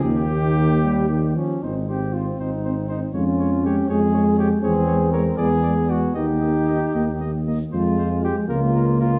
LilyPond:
<<
  \new Staff \with { instrumentName = "Trumpet" } { \time 6/8 \key aes \major \tempo 4. = 78 g'2~ g'8 r8 | c''8 c''8 c''8 c''8 c''8 c''8 | des''8 des''8 des''8 des''8 des''8 des''8 | des''8 des''8 des''8 d''8 d''8 d''8 |
ees''8 ees''8 ees''8 ees''8 ees''8 ees''8 | c''8 c''8 c''8 bes'8 bes'8 bes'8 | }
  \new Staff \with { instrumentName = "Flugelhorn" } { \time 6/8 \key aes \major g'2~ g'8 des'8 | ees'8 g'8 f'8 ees'4 ees'8 | f'4 g'8 aes'4 g'8 | aes'4 bes'8 gis'4 ges'8 |
g'2~ g'8 r8 | f'4 g'8 f'4 f'8 | }
  \new Staff \with { instrumentName = "French horn" } { \time 6/8 \key aes \major bes2~ bes16 r8. | c'8 c'8 c'8 c'8 c'8 c'8 | aes8 aes8 aes8 aes8 aes8 aes8 | aes8 aes8 aes8 gis8 gis8 gis8 |
bes8 bes8 bes8 bes8 bes8 bes8 | aes8 aes8 aes8 bes8 bes8 bes8 | }
  \new Staff \with { instrumentName = "Trombone" } { \time 6/8 \key aes \major ees4. g8 ees8 f8 | c'2. | des'4. aes4. | c'4. b4. |
ees'2~ ees'16 r8. | aes4. bes4. | }
  \new Staff \with { instrumentName = "Tuba" } { \clef bass \time 6/8 \key aes \major ees,2~ ees,8 r8 | aes,,4. aes,,4. | f,4. f,4. | fes,4. e,4. |
ees,4. ees,4. | f,4. des,4. | }
>>